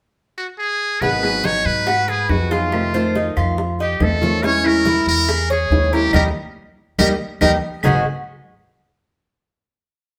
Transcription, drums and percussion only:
1.02 high bongo medium
1.02 high conga soft
1.23 high conga soft
1.23 claves medium
1.44 high bongo medium
1.44 high conga medium
1.65 high bongo soft
1.87 high bongo medium
1.87 high conga soft
1.87 claves medium
2.08 high bongo soft
2.08 high conga soft
2.29 high bongo soft
2.29 low bongo medium
2.29 high conga soft
2.50 high bongo soft
2.50 high conga soft
2.72 high bongo medium
2.72 high conga soft
2.72 claves medium
2.94 high conga soft
3.15 high bongo medium
3.15 high conga medium
3.36 high bongo soft
3.36 high conga soft
3.36 claves medium
3.57 high bongo medium
3.57 high conga soft
3.79 high bongo soft
3.79 high conga soft
4.00 high bongo soft
4.00 low bongo medium
4.00 high conga medium
4.00 claves medium
4.22 high bongo soft
4.22 high conga medium
4.43 high bongo medium
4.64 high conga soft
4.64 claves medium
4.85 high bongo medium
4.85 high conga medium
5.07 high bongo soft
5.28 high bongo medium
5.28 high conga soft
5.28 claves medium
5.50 high bongo soft
5.50 high conga soft
5.71 high bongo soft
5.71 low bongo medium
5.71 high conga soft
5.92 high bongo soft
5.92 high conga soft
6.13 low bongo medium
6.13 high conga medium
6.13 claves loud
6.99 low bongo loud
6.99 high conga medium
6.99 claves medium
7.41 low bongo loud
7.41 high conga medium
7.41 claves medium
7.83 low bongo medium
7.83 low conga medium
7.83 claves medium

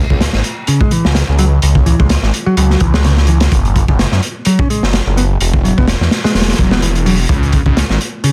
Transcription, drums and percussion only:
0.10 kick medium
0.21 snare loud
0.21 closed hi-hat loud
0.33 snare soft
0.44 closed hi-hat medium
0.67 closed hi-hat medium
0.81 kick medium
0.91 closed hi-hat medium
1.05 snare medium
1.15 snare loud
1.15 closed hi-hat medium
1.39 closed hi-hat medium
1.62 closed hi-hat medium
1.75 kick medium
1.86 closed hi-hat medium
2.00 kick medium
2.09 snare loud
2.09 closed hi-hat medium
2.23 snare soft
2.34 closed hi-hat medium
2.57 closed hi-hat medium
2.70 snare soft
2.80 kick medium
2.80 closed hi-hat medium
2.94 snare loud
3.04 snare loud
3.04 closed hi-hat medium
3.17 snare soft
3.27 closed hi-hat medium
3.40 snare loud
3.40 closed hi-hat medium
3.52 kick loud
3.52 closed hi-hat medium
3.65 closed hi-hat soft
3.76 kick medium
3.76 closed hi-hat medium
3.88 kick loud
3.99 snare loud
3.99 closed hi-hat medium
4.12 snare medium
4.23 closed hi-hat medium
4.45 closed hi-hat medium
4.59 kick loud
4.70 closed hi-hat medium
4.83 snare medium
4.93 snare loud
4.93 closed hi-hat medium
5.17 closed hi-hat medium
5.40 closed hi-hat medium
5.54 kick loud
5.65 closed hi-hat medium
5.78 kick medium
5.88 snare loud
5.88 closed hi-hat medium
6.02 snare soft
6.11 snare medium
6.11 closed hi-hat medium
6.25 snare loud
6.25 closed hi-hat medium
6.35 snare medium
6.35 closed hi-hat medium
6.42 snare medium
6.42 closed hi-hat medium
6.48 snare medium
6.48 closed hi-hat medium
6.53 snare medium
6.53 closed hi-hat medium
6.58 kick medium
6.58 closed hi-hat medium
6.71 snare loud
6.82 closed hi-hat medium
6.95 closed hi-hat soft
7.06 open hi-hat medium
7.29 kick loud
7.29 closed hi-hat medium
7.43 closed hi-hat soft
7.52 kick medium
7.52 closed hi-hat medium
7.66 kick medium
7.77 snare loud
7.77 closed hi-hat medium
7.90 snare medium
8.01 closed hi-hat medium
8.24 closed hi-hat medium

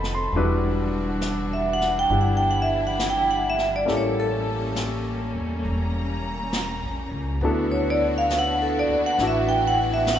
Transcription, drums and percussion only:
0.04 snare soft
0.33 brush sweep soft
1.21 snare soft
1.21 hi-hat pedal medium
1.81 snare soft
2.10 brush sweep soft
2.99 snare soft
2.99 hi-hat pedal medium
3.58 snare soft
3.88 brush sweep soft
3.88 snare soft
4.76 snare soft
4.76 hi-hat pedal medium
5.64 brush sweep soft
6.53 snare soft
6.53 hi-hat pedal medium
7.41 brush sweep soft
8.30 snare soft
8.30 hi-hat pedal medium
9.18 brush sweep soft
9.18 snare soft
10.07 snare medium
10.07 hi-hat pedal medium

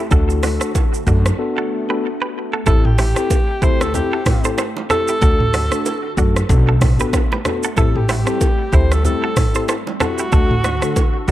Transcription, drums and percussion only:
0.11 kick loud
0.11 low conga medium
0.11 shaker medium
0.30 shaker medium
0.43 cross-stick medium
0.43 open hi-hat medium
0.43 low bongo medium
0.43 shaker medium
0.61 cross-stick medium
0.61 shaker medium
0.75 kick loud
0.75 high bongo medium
0.75 shaker medium
0.94 shaker medium
1.07 kick medium
1.07 shaker medium
1.26 cross-stick loud
1.26 high bongo medium
1.26 shaker medium
2.66 kick loud
2.66 low conga medium
2.66 shaker medium
2.85 mid tom medium
2.98 cross-stick medium
2.98 open hi-hat medium
2.98 low bongo medium
2.98 shaker medium
3.16 cross-stick medium
3.16 shaker medium
3.30 kick loud
3.30 high bongo medium
3.30 shaker medium
3.62 kick loud
3.62 shaker medium
3.81 cross-stick loud
3.81 high bongo medium
3.81 shaker medium
3.94 low conga medium
3.94 shaker medium
4.26 kick loud
4.26 cross-stick loud
4.26 mid tom loud
4.26 open hi-hat medium
4.26 high bongo medium
4.26 low bongo medium
4.26 shaker medium
4.44 shaker medium
4.58 cross-stick medium
4.58 high bongo medium
4.58 shaker medium
4.77 low bongo medium
4.90 cross-stick loud
4.90 low conga medium
4.90 shaker medium
5.08 shaker medium
5.21 kick loud
5.21 low conga medium
5.21 shaker medium
5.40 mid tom medium
5.53 cross-stick medium
5.53 open hi-hat medium
5.53 low bongo medium
5.53 shaker medium
5.72 cross-stick medium
5.72 shaker medium
5.86 high bongo medium
5.86 shaker medium
6.17 kick medium
6.17 shaker medium
6.36 cross-stick medium
6.36 high bongo medium
6.36 shaker medium
6.49 kick medium
6.49 low conga medium
6.49 shaker medium
6.81 kick loud
6.81 cross-stick loud
6.81 mid tom loud
6.81 open hi-hat medium
6.81 high bongo medium
6.81 low bongo medium
6.81 shaker medium
7.00 shaker medium
7.13 kick medium
7.13 cross-stick medium
7.13 high bongo medium
7.13 shaker medium
7.32 low bongo medium
7.45 cross-stick loud
7.45 low conga medium
7.45 shaker medium
7.63 shaker medium
7.76 kick loud
7.76 low conga medium
7.76 shaker medium
7.95 mid tom medium
8.09 cross-stick medium
8.09 open hi-hat medium
8.09 low bongo medium
8.09 shaker medium
8.27 cross-stick medium
8.27 shaker medium
8.41 kick loud
8.41 high bongo medium
8.41 shaker medium
8.73 kick medium
8.73 shaker medium
8.92 cross-stick medium
8.92 high bongo medium
8.92 shaker medium
9.05 low conga medium
9.05 shaker medium
9.36 kick loud
9.36 cross-stick loud
9.36 mid tom loud
9.36 open hi-hat medium
9.36 high bongo medium
9.36 low bongo medium
9.36 shaker medium
9.55 shaker medium
9.68 cross-stick loud
9.68 high bongo medium
9.68 shaker medium
9.87 low bongo medium
10.00 cross-stick loud
10.00 low conga medium
10.00 shaker medium
10.18 shaker medium
10.32 kick loud
10.32 low conga medium
10.32 shaker medium
10.51 mid tom medium
10.64 cross-stick medium
10.64 low bongo medium
10.64 shaker medium
10.82 cross-stick medium
10.82 shaker medium
10.96 kick loud
10.96 high bongo medium
10.96 shaker medium
11.28 kick medium
11.28 shaker medium

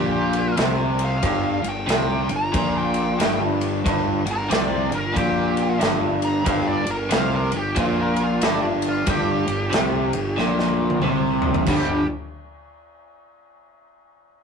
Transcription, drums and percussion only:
0.33 ride medium
0.57 snare loud
0.57 ride medium
0.99 ride medium
1.23 kick loud
1.23 ride medium
1.64 ride medium
1.89 snare loud
1.89 ride loud
2.29 ride medium
2.54 kick loud
2.54 ride loud
2.94 ride medium
3.20 snare loud
3.20 ride medium
3.61 ride medium
3.86 kick loud
3.86 ride medium
4.27 ride medium
4.51 snare loud
4.51 ride medium
4.92 ride medium
5.16 kick medium
5.16 ride medium
5.57 ride medium
5.81 snare loud
5.81 ride medium
6.22 ride medium
6.46 kick loud
6.46 ride medium
6.87 ride medium
7.11 snare loud
7.11 ride loud
7.52 ride medium
7.76 kick loud
7.76 ride medium
8.16 ride medium
8.41 snare loud
8.41 ride loud
8.82 ride medium
9.07 kick loud
9.07 ride loud
9.48 ride medium
9.73 snare loud
9.73 ride medium
10.13 ride medium
10.38 snare medium
10.59 snare medium
10.90 high tom medium
11.02 mid tom medium
11.42 floor tom medium
11.54 floor tom medium
11.66 kick loud
11.66 crash medium

